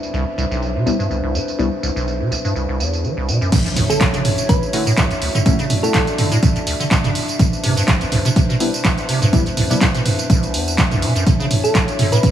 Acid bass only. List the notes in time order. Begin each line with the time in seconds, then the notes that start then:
0.14 C2
0.38 C2
0.51 B1
0.75 C3
0.86 C2
0.99 G2
1.10 C2
1.23 C2
1.34 G2
1.59 C2
1.83 C2
1.96 B1
2.20 C3
2.31 C2
2.45 G2
2.56 C2
2.69 C2
2.80 E2
3.04 E3
3.17 C2
3.28 B2
3.41 F#2
3.52 D2
3.66 F#2
3.77 D2
3.90 D3
4.01 D3
4.14 C#3
4.49 D2
4.73 D3
4.86 A2
4.97 D2
5.11 F#2
5.22 D2
5.35 D3
5.46 D3
5.59 C#3
5.94 D2
6.18 D3
6.32 A2
6.43 D2
6.56 F#2
6.67 D2
6.80 D3
6.91 D3
7.04 C#3
7.39 C2
7.64 C3
7.77 G2
7.88 C2
8.01 E2
8.12 C2
8.25 C3
8.36 C3
8.49 B2
8.85 C2
9.09 C3
9.22 G2
9.33 C2
9.46 E2
9.57 C2
9.70 C3
9.81 C3
9.94 B2
10.30 C2
10.54 E2
10.78 E3
10.91 C2
11.02 B2
11.15 F#2
11.26 D3
11.40 C#3
11.75 D2
11.99 D3
12.12 A2
12.23 D2